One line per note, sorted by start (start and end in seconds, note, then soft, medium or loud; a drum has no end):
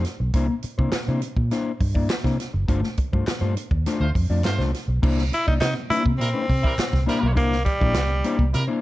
0.05 snare soft
0.05 closed hi-hat medium
0.20 0.33 B1 medium
0.20 muted clean electric guitar stroke soft
0.34 0.47 C2 loud
0.34 0.54 A#3 medium
0.34 0.49 D4 medium
0.34 0.48 E4 loud
0.34 0.48 C5 loud
0.34 kick loud
0.34 closed hi-hat medium
0.49 muted clean electric guitar stroke soft
0.63 muted fingered electric bass stroke soft
0.63 muted clean electric guitar stroke soft
0.63 closed hi-hat medium
0.78 0.92 C3 medium
0.78 0.92 A#3 medium
0.78 0.92 D4 medium
0.78 0.92 E4 medium
0.78 0.92 C5 medium
0.78 kick medium
0.92 muted fingered electric bass stroke soft
0.92 snare loud
0.92 clap loud
0.92 closed hi-hat medium
1.08 1.21 C3 loud
1.08 1.21 A#3 medium
1.08 1.22 D4 medium
1.08 1.22 E4 medium
1.08 1.22 C5 medium
1.22 muted clean electric guitar stroke soft
1.22 closed hi-hat medium
1.37 1.50 A#2 medium
1.37 muted clean electric guitar stroke soft
1.37 kick medium
1.51 1.70 A#3 medium
1.51 1.71 D4 medium
1.51 1.71 E4 medium
1.51 1.71 C5 loud
1.51 snare soft
1.51 closed hi-hat medium
1.80 2.07 G2 medium
1.80 muted clean electric guitar stroke soft
1.80 kick medium
1.80 open hi-hat medium
1.95 2.09 A#3 medium
1.95 2.10 D4 medium
1.95 2.10 E4 medium
1.95 2.10 D5 medium
1.95 kick loud
2.09 snare loud
2.09 clap loud
2.09 closed hi-hat medium
2.24 2.37 C3 medium
2.24 2.38 A#3 medium
2.24 2.38 D4 medium
2.24 2.39 E4 medium
2.24 2.39 C5 medium
2.24 kick medium
2.24 snare soft
2.39 muted clean electric guitar stroke soft
2.39 snare soft
2.39 closed hi-hat medium
2.54 2.67 F#1 medium
2.54 muted clean electric guitar stroke soft
2.68 2.81 G1 loud
2.68 2.87 A3 medium
2.68 2.83 D4 loud
2.68 2.82 F4 loud
2.68 2.82 C5 loud
2.68 kick loud
2.68 closed hi-hat medium
2.83 muted clean electric guitar stroke soft
2.83 snare soft
2.97 muted clean electric guitar stroke soft
2.97 muted fingered electric bass stroke soft
2.97 kick medium
2.97 closed hi-hat medium
3.13 3.26 G2 medium
3.13 3.26 A3 medium
3.13 3.26 D4 medium
3.13 3.26 F4 medium
3.13 3.27 C5 medium
3.13 kick medium
3.27 muted fingered electric bass stroke soft
3.27 muted clean electric guitar stroke soft
3.27 snare loud
3.27 clap loud
3.27 closed hi-hat loud
3.41 3.54 G2 loud
3.41 3.55 A3 medium
3.41 3.56 D4 medium
3.41 3.56 F4 medium
3.41 3.56 C5 medium
3.56 muted clean electric guitar stroke soft
3.56 closed hi-hat medium
3.71 3.84 D#2 medium
3.71 muted clean electric guitar stroke soft
3.71 kick medium
3.86 4.05 A3 medium
3.86 4.05 D4 loud
3.86 4.06 F4 medium
3.86 4.06 C5 loud
3.86 snare soft
3.86 closed hi-hat medium
4.00 4.13 D2 loud
4.00 4.10 A3 medium
4.00 4.10 F4 medium
4.00 4.10 C5 medium
4.15 4.28 F2 medium
4.15 muted clean electric guitar stroke soft
4.15 kick medium
4.15 open hi-hat medium
4.30 4.43 F2 medium
4.30 4.43 A3 medium
4.30 4.44 D4 medium
4.30 4.44 F4 medium
4.30 4.45 D5 medium
4.44 4.57 G2 loud
4.44 4.63 A3 medium
4.44 4.63 F4 medium
4.44 4.63 C5 loud
4.44 snare loud
4.44 clap loud
4.44 closed hi-hat medium
4.58 4.72 C2 medium
4.58 4.72 A3 medium
4.58 4.72 D4 medium
4.58 4.73 F4 medium
4.58 4.73 C5 medium
4.58 snare soft
4.74 snare soft
4.74 closed hi-hat medium
4.88 5.01 B1 medium
4.88 muted clean electric guitar stroke soft
5.02 5.29 C2 loud
5.02 5.22 A#3 loud
5.02 5.22 D4 loud
5.02 5.22 E4 loud
5.02 5.22 C5 loud
5.02 kick loud
5.02 crash loud
5.18 snare soft
5.32 5.47 E4 loud
5.32 muted clean electric guitar stroke soft
5.32 closed hi-hat medium
5.47 5.60 C2 medium
5.47 5.59 A#3 soft
5.47 5.60 D4 medium
5.47 5.54 D#4 medium
5.47 5.60 E4 medium
5.47 5.61 D5 medium
5.47 kick loud
5.60 5.74 C3 loud
5.60 5.74 D#4 loud
5.60 snare loud
5.60 clap loud
5.60 closed hi-hat loud
5.75 muted clean electric guitar stroke soft
5.90 6.10 A#3 medium
5.90 6.05 D4 medium
5.90 6.03 E4 loud
5.90 6.04 E4 medium
5.90 6.04 C5 medium
5.90 muted fingered electric bass stroke medium
5.90 closed hi-hat medium
6.05 6.20 C3 loud
6.05 muted clean electric guitar stroke soft
6.05 kick medium
6.18 6.32 A#2 loud
6.18 6.29 G3 medium
6.18 7.02 C4 medium
6.18 6.29 E4 medium
6.18 6.29 A#4 loud
6.18 muted clean electric guitar stroke medium
6.18 snare soft
6.18 closed hi-hat medium
6.33 6.47 A#3 medium
6.33 6.47 D4 medium
6.33 6.47 E4 medium
6.33 6.48 C5 medium
6.48 6.62 C3 loud
6.48 muted clean electric guitar stroke soft
6.48 kick medium
6.48 open hi-hat medium
6.62 6.73 G3 medium
6.62 6.73 E4 medium
6.62 6.73 A#4 loud
6.62 muted clean electric guitar stroke medium
6.62 kick loud
6.78 muted fingered electric bass stroke medium
6.78 snare loud
6.78 clap loud
6.78 closed hi-hat medium
6.92 7.06 C2 medium
6.92 muted clean electric guitar stroke soft
6.92 kick medium
6.92 snare soft
7.06 7.32 G3 loud
7.06 7.26 A#3 medium
7.06 7.22 D4 medium
7.06 7.21 E4 medium
7.06 7.32 E4 loud
7.06 7.32 A#4 loud
7.06 7.21 C5 medium
7.06 snare soft
7.06 closed hi-hat medium
7.22 7.37 B1 medium
7.22 muted clean electric guitar stroke soft
7.35 7.63 C2 loud
7.35 7.55 A#3 medium
7.35 7.64 A#3 loud
7.35 7.55 D4 loud
7.35 7.55 E4 medium
7.35 7.55 C5 medium
7.35 kick loud
7.35 closed hi-hat medium
7.52 snare soft
7.65 8.49 G3 loud
7.65 muted clean electric guitar stroke soft
7.65 kick loud
7.65 closed hi-hat medium
7.80 7.95 A#1 medium
7.80 7.94 A#3 medium
7.80 7.94 D4 medium
7.80 7.95 E4 medium
7.80 7.95 D5 medium
7.80 kick loud
7.94 8.21 C2 medium
7.94 snare loud
7.94 clap loud
7.94 closed hi-hat loud
8.10 muted clean electric guitar stroke medium
8.24 8.43 A#3 medium
8.24 8.39 D4 loud
8.24 8.39 E4 loud
8.24 8.38 C5 loud
8.24 closed hi-hat medium
8.39 8.52 C2 medium
8.39 muted clean electric guitar stroke soft
8.39 kick medium
8.53 8.67 C3 medium
8.53 8.63 G3 medium
8.53 8.63 E4 medium
8.53 8.63 A#4 loud
8.53 muted clean electric guitar stroke soft
8.53 snare soft
8.53 closed hi-hat medium
8.68 8.81 A#3 medium
8.68 8.81 D4 medium
8.68 8.81 E4 medium
8.68 8.81 C5 medium